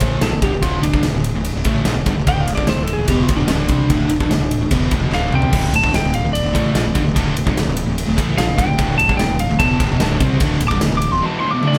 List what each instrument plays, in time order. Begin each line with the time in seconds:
Already playing: lead electric guitar C5
0.00 fingered electric bass A1, overdriven electric guitar A2 E3 A3, kick, ride
0.21 fingered electric bass A#1, overdriven electric guitar A#2 F3, lead electric guitar A4, snare, ride
0.32 fingered electric bass D1, overdriven electric guitar D2 A2
0.41 fingered electric bass G1, overdriven electric guitar G2 D3, lead electric guitar G4, kick, ride
0.51 fingered electric bass D1, overdriven electric guitar D2 A2
0.62 fingered electric bass D1, overdriven electric guitar D2 A2, lead electric guitar F4, kick, ride
0.66 overdriven electric guitar D3
0.82 fingered electric bass D1, overdriven electric guitar D2 A2, lead electric guitar D4, ride
0.93 fingered electric bass G1, overdriven electric guitar G2, kick
0.97 overdriven electric guitar D3
1.03 fingered electric bass D1, overdriven electric guitar D2 A2, snare, ride
1.13 fingered electric bass D1, overdriven electric guitar D2 A2
1.24 ride
1.34 fingered electric bass D1, overdriven electric guitar D2 A2
1.45 ride
1.55 fingered electric bass D1, overdriven electric guitar D2 A2
1.64 fingered electric bass A1, overdriven electric guitar A2 E3 A3, kick, ride
1.85 fingered electric bass A#1, overdriven electric guitar A#2 F3, snare, ride
1.96 fingered electric bass D1, overdriven electric guitar D2 A2
2.06 fingered electric bass G1, overdriven electric guitar G2 D3, kick, ride
2.17 fingered electric bass D1, overdriven electric guitar D2 A2
2.27 fingered electric bass D1, overdriven electric guitar D2 A2 D3, lead electric guitar G5, kick, ride
2.40 lead electric guitar F5
2.48 fingered electric bass D1, overdriven electric guitar D2 A2, ride
2.55 fingered electric bass G1, overdriven electric guitar G2 D3, lead electric guitar D5, kick
2.67 fingered electric bass D1, overdriven electric guitar D2 A2, lead electric guitar C5, snare, ride
2.77 fingered electric bass D1, overdriven electric guitar D2 A2
2.83 lead electric guitar A4
2.87 ride
2.93 lead electric guitar G#4
2.99 fingered electric bass D1, overdriven electric guitar D2 A2
3.08 fingered electric bass E1, overdriven electric guitar E2 B2 E3, lead electric guitar G4, kick, ride
3.23 lead electric guitar F4
3.29 fingered electric bass D1, overdriven electric guitar D2 A2, kick, ride
3.37 fingered electric bass E1, overdriven electric guitar E2 B2, lead electric guitar D4
3.47 fingered electric bass D1, overdriven electric guitar D2 A2 D3, lead electric guitar D4, snare, ride
3.69 fingered electric bass C2, overdriven electric guitar C3 G3 C4, kick, ride
3.90 fingered electric bass D1, overdriven electric guitar D2 A2 D3, kick, ride
4.07 fingered electric bass D1, overdriven electric guitar D2, ride
4.12 overdriven electric guitar A2
4.20 fingered electric bass G1, overdriven electric guitar G2 D3, kick
4.28 fingered electric bass D1, overdriven electric guitar D2 A2, snare, ride
4.38 fingered electric bass D1, overdriven electric guitar D2 A2
4.51 ride
4.58 fingered electric bass D1, overdriven electric guitar D2
4.62 overdriven electric guitar A2
4.71 fingered electric bass E1, overdriven electric guitar E2 B2 E3, kick, ride
4.91 fingered electric bass D1, overdriven electric guitar D2 A2, kick, ride
4.99 fingered electric bass E1, overdriven electric guitar E2 B2
5.10 fingered electric bass D1, overdriven electric guitar D2 A2 D3, snare
5.14 lead electric guitar F5
5.29 fingered electric bass C2, overdriven electric guitar C3, mid tom
5.34 overdriven electric guitar G3 C4, lead electric guitar G5
5.42 floor tom
5.53 fingered electric bass D1, overdriven electric guitar D2 A2 D3, kick, crash
5.71 fingered electric bass D1, overdriven electric guitar D2 A2, ride
5.76 lead electric guitar A5
5.83 fingered electric bass G1, overdriven electric guitar G2 D3, kick
5.93 fingered electric bass D1, overdriven electric guitar D2 A2, lead electric guitar G5, snare, ride
6.04 fingered electric bass D1, overdriven electric guitar D2 A2
6.14 lead electric guitar F5, ride
6.24 fingered electric bass D1, overdriven electric guitar D2 A2
6.33 lead electric guitar D5, ride
6.44 fingered electric bass D1, overdriven electric guitar D2 A2
6.53 fingered electric bass A1, overdriven electric guitar A2 E3 A3, kick, ride
6.75 fingered electric bass A#1, overdriven electric guitar A#2 F3, snare, ride
6.85 fingered electric bass D1, overdriven electric guitar D2 A2
6.94 fingered electric bass G1, overdriven electric guitar G2 D3, kick, ride
7.05 fingered electric bass D1, overdriven electric guitar D2 A2
7.14 fingered electric bass D1, overdriven electric guitar D2 A2 D3, kick, ride
7.35 fingered electric bass D1, overdriven electric guitar D2 A2, ride
7.46 fingered electric bass G1, overdriven electric guitar G2 D3, kick
7.56 fingered electric bass D1, overdriven electric guitar D2 A2, snare, ride
7.66 fingered electric bass D1, overdriven electric guitar D2 A2
7.77 ride
7.86 fingered electric bass D1, overdriven electric guitar D2 A2
7.98 ride
8.07 fingered electric bass D1, overdriven electric guitar D2 A2
8.16 fingered electric bass A1, overdriven electric guitar A2 E3 A3, kick, ride
8.37 fingered electric bass A#1, overdriven electric guitar A#2 F3, lead electric guitar F5, snare, ride
8.47 fingered electric bass D1, overdriven electric guitar D2 A2
8.56 fingered electric bass G1, overdriven electric guitar G2 D3, lead electric guitar G5, kick, ride
8.61 distorted electric guitar G2 D3
8.67 fingered electric bass D1, overdriven electric guitar D2 A2
8.77 fingered electric bass D1, overdriven electric guitar D2 A2 D3, kick, ride
8.98 fingered electric bass D1, overdriven electric guitar D2 A2, lead electric guitar A5, ride
9.07 fingered electric bass G1, overdriven electric guitar G2 D3, kick
9.17 fingered electric bass D1, overdriven electric guitar D2 A2, lead electric guitar G5, snare, ride
9.22 distorted electric guitar D2
9.29 fingered electric bass D1, overdriven electric guitar D2 A2
9.39 lead electric guitar F5, ride
9.50 fingered electric bass D1, overdriven electric guitar D2 A2
9.59 fingered electric bass E1, overdriven electric guitar E2 B2 E3, lead electric guitar A5, kick, ride
9.79 fingered electric bass D1, overdriven electric guitar D2 A2, kick, ride
9.90 fingered electric bass E1, overdriven electric guitar E2 B2
10.00 fingered electric bass D1, overdriven electric guitar D2 A2 D3, snare, ride
10.20 fingered electric bass C2, overdriven electric guitar C3 G3 C4, kick, ride
10.40 fingered electric bass D1, overdriven electric guitar D2 A2 D3, kick, ride
10.60 fingered electric bass D1, overdriven electric guitar D2 A2, ride
10.68 fingered electric bass G1, overdriven electric guitar G2, lead electric guitar D6, kick
10.73 overdriven electric guitar D3
10.81 fingered electric bass D1, overdriven electric guitar D2 A2, snare, ride
10.91 fingered electric bass D1, overdriven electric guitar D2 A2
10.97 lead electric guitar D6
11.02 ride
11.11 fingered electric bass D1, overdriven electric guitar D2 A2, lead electric guitar C6
11.22 overdriven electric guitar E2 B2 E3, lead electric guitar A5
11.39 overdriven electric guitar D2, lead electric guitar C6
11.44 overdriven electric guitar A2
11.51 overdriven electric guitar E2 B2, lead electric guitar D6
11.62 overdriven electric guitar D2 A2 D3, high tom
11.67 lead electric guitar D5
11.73 snare